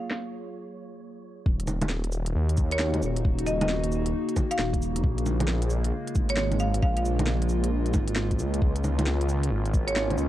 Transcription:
Already playing: ambient pad F#3 A#3 F4 G#4, synth texture C#5
0.11 snare
1.45 detuned saw bass D#1, ambient pad C#3 A#3 D#4 F#4, kick
1.60 closed hi-hat
1.67 low bongo, cabasa
1.82 closed hi-hat, low bongo
1.89 snare
2.04 closed hi-hat
2.12 cabasa
2.26 closed hi-hat
2.35 detuned saw bass D#2
2.49 closed hi-hat
2.57 kick, cabasa
2.71 marimba C#5, closed hi-hat
2.79 marimba C#5, snare
2.94 closed hi-hat, low bongo
3.02 detuned saw bass D#1, cabasa
3.16 closed hi-hat
3.25 detuned saw bass D#1, kick
3.39 closed hi-hat
3.47 marimba D#5, cabasa
3.61 marimba D#5, closed hi-hat, low bongo
3.69 snare
3.84 closed hi-hat
3.92 cabasa
4.06 closed hi-hat
4.29 closed hi-hat
4.36 kick, low bongo, cabasa
4.51 marimba F5, closed hi-hat
4.58 detuned saw bass D#1, snare
4.73 kick, closed hi-hat
4.82 cabasa
4.96 detuned saw bass F1, closed hi-hat
5.03 detuned saw bass A#1, ambient pad G#3 F4, kick
5.18 closed hi-hat
5.26 low bongo, cabasa
5.40 closed hi-hat, low bongo
5.48 snare
5.62 closed hi-hat
5.70 cabasa
5.84 closed hi-hat
6.07 closed hi-hat
6.15 detuned saw bass G#1, kick, cabasa
6.29 marimba C#5, closed hi-hat
6.37 marimba C#5, snare
6.52 closed hi-hat, low bongo
6.60 marimba F5, cabasa
6.74 closed hi-hat
6.82 detuned saw bass A#1, marimba F5, kick
6.97 marimba F5, closed hi-hat
7.05 cabasa
7.19 closed hi-hat, low bongo
7.27 snare
7.42 closed hi-hat
7.49 cabasa
7.64 closed hi-hat
7.72 detuned saw bass A#1
7.86 closed hi-hat
7.94 detuned saw bass G#1, kick, low bongo, cabasa
8.08 closed hi-hat
8.16 snare
8.31 kick, closed hi-hat
8.39 detuned saw bass C#2, cabasa
8.54 closed hi-hat
8.62 detuned saw bass C#2, ambient pad D#3 A#3 C#4, synth texture C#5, kick
8.76 closed hi-hat
8.84 low bongo, cabasa
8.99 closed hi-hat, low bongo
9.07 snare
9.21 closed hi-hat
9.29 cabasa
9.43 closed hi-hat
9.51 detuned saw bass G#1
9.66 closed hi-hat
9.74 kick, cabasa
9.88 marimba C#5, closed hi-hat
9.96 marimba C#5, snare
10.11 closed hi-hat, low bongo
10.18 detuned saw bass C#2, cabasa

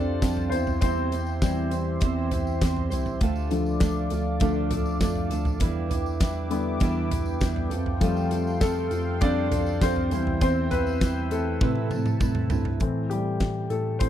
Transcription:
Already playing: tine electric piano F2, grand piano F3 G3 A3 D4 A4 D5, steel-string acoustic guitar C4 F4 A4, analog synth pad G4 C5 F5 A5
0.21 tine electric piano F2, steel-string acoustic guitar G3 C4 F4 A4, kick, snare, closed hi-hat, tambourine
0.37 floor tom
0.49 tine electric piano E2, grand piano C4 C5, analog synth pad G4 E5 C6, steel-string acoustic guitar C5, closed hi-hat, tambourine
0.54 steel-string acoustic guitar C4 E4
0.67 floor tom, tambourine
0.81 tine electric piano E2, steel-string acoustic guitar E3 G3 C4 E4 C5, grand piano C4 C5, kick, closed hi-hat, tambourine
1.11 steel-string acoustic guitar C4 E4 C5, closed hi-hat, tambourine
1.26 tambourine
1.42 grand piano E3 G3 C4, steel-string acoustic guitar G3 C4 E4 C5, kick, snare, closed hi-hat, tambourine
1.71 steel-string acoustic guitar C4 E4 C5, closed hi-hat, tambourine
2.01 tine electric piano E2, steel-string acoustic guitar E3 G3 C4 E4 C5, kick, closed hi-hat, tambourine
2.31 steel-string acoustic guitar C4 E4 C5, closed hi-hat, floor tom, tambourine
2.47 tambourine
2.61 tine electric piano E2, steel-string acoustic guitar G3 C4 E4 C5, kick, snare, closed hi-hat, tambourine
2.77 floor tom
2.90 tine electric piano C2, steel-string acoustic guitar C4 E4 C5, closed hi-hat, tambourine
3.06 floor tom, tambourine
3.20 tine electric piano D2, steel-string acoustic guitar D3 A3 D4 F4 A4, analog synth pad A4 D5 F5 D6, kick, closed hi-hat, tambourine
3.36 tambourine
3.50 grand piano D3 F3 A3, steel-string acoustic guitar D4 F4 A4, closed hi-hat, tambourine
3.66 tambourine
3.80 steel-string acoustic guitar A3 D4 F4, kick, snare, closed hi-hat, tambourine
3.84 steel-string acoustic guitar A4
4.10 tine electric piano D2, steel-string acoustic guitar D4 F4 A4, closed hi-hat, tambourine
4.40 tine electric piano D2, steel-string acoustic guitar D3 A3 D4 F4 A4, grand piano D3 F3 A3, kick, closed hi-hat, tambourine
4.70 steel-string acoustic guitar D4 F4 A4, closed hi-hat, floor tom, tambourine
4.86 tambourine
5.00 tine electric piano F2, steel-string acoustic guitar A3 D4 F4 A4, kick, snare, closed hi-hat, tambourine
5.15 floor tom
5.30 tine electric piano D2, steel-string acoustic guitar D4 F4 A4, closed hi-hat, tambourine
5.45 floor tom, tambourine
5.60 tine electric piano E2, steel-string acoustic guitar E3 G3 D4 E4 B4, analog synth pad B4 E5 G5 D6, kick, closed hi-hat, tambourine
5.89 steel-string acoustic guitar D4 E4 B4, closed hi-hat, floor tom, tambourine
6.06 tambourine
6.20 steel-string acoustic guitar G3 D4 E4 B4, kick, snare, closed hi-hat, tambourine
6.50 grand piano D3 G3 B3, steel-string acoustic guitar D4 E4 B4, closed hi-hat, tambourine
6.80 tine electric piano E2, steel-string acoustic guitar E3 G3 D4 E4 B4, kick, closed hi-hat, tambourine
7.10 steel-string acoustic guitar D4 E4 B4, closed hi-hat, floor tom, tambourine
7.26 tambourine
7.40 tine electric piano E2, steel-string acoustic guitar G3 D4 E4 B4, kick, snare, closed hi-hat, tambourine
7.56 floor tom
7.70 tine electric piano F2, steel-string acoustic guitar C4 F4 A4, analog synth pad A4 F5 C6, closed hi-hat, tambourine
7.86 floor tom
8.00 grand piano F3 G3 A3, steel-string acoustic guitar F3 G3 C4 F4 A4, kick, closed hi-hat, tambourine
8.17 tambourine
8.30 steel-string acoustic guitar C4 F4 A4, closed hi-hat, tambourine
8.47 tambourine
8.60 steel-string acoustic guitar G3 C4 F4 A4, grand piano A3 A4, kick, snare, closed hi-hat, tambourine
8.91 tine electric piano F2, steel-string acoustic guitar C4 F4 A4, closed hi-hat, tambourine
9.21 tine electric piano F2, steel-string acoustic guitar F3 G3 C4 F4 A4, grand piano D4 D5, kick, closed hi-hat, tambourine
9.51 steel-string acoustic guitar C4 F4 A4, closed hi-hat, floor tom, tambourine
9.66 tambourine
9.81 tine electric piano F2, steel-string acoustic guitar G3 C4 F4 A4, grand piano C4 C5, kick, snare, closed hi-hat, tambourine
9.96 floor tom
10.11 tine electric piano E2, grand piano E3 G3 C4, analog synth pad C4 E5 E6, steel-string acoustic guitar C4 E4 C5, closed hi-hat, tambourine
10.27 floor tom
10.41 tine electric piano E2, steel-string acoustic guitar E3 G3 C4 E4 C5, grand piano C4 C5, kick, closed hi-hat, tambourine
10.70 steel-string acoustic guitar C4 E4 C5, grand piano B4, closed hi-hat, floor tom, tambourine
10.87 tambourine
11.00 steel-string acoustic guitar G3 C4 E4 C5, kick, snare, closed hi-hat, tambourine
11.30 grand piano A3 A4, steel-string acoustic guitar C4 E4 C5, closed hi-hat, tambourine
11.61 steel-string acoustic guitar A2 E3 A3 C4 E4 B4, tine electric piano A2, grand piano C3 A3 B4, analog synth pad A4 A5, kick, high tom, tambourine
11.76 high tom
11.90 steel-string acoustic guitar A3 C4 E4 B4, mid tom, tambourine
12.05 mid tom, tambourine
12.20 tine electric piano A2, steel-string acoustic guitar A3 C4 E4 B4, kick, mid tom, tambourine
12.35 mid tom
12.49 tine electric piano G2, steel-string acoustic guitar A3 C4 E4 B4, floor tom, tambourine
12.65 floor tom
12.80 tine electric piano A2, grand piano E3 A3 C4, kick, closed hi-hat
13.10 grand piano G3 G4, closed hi-hat
13.40 kick, snare, closed hi-hat
13.70 tine electric piano A2, grand piano A3 A4, closed hi-hat
13.99 tine electric piano A2, grand piano C4 C5, kick, closed hi-hat

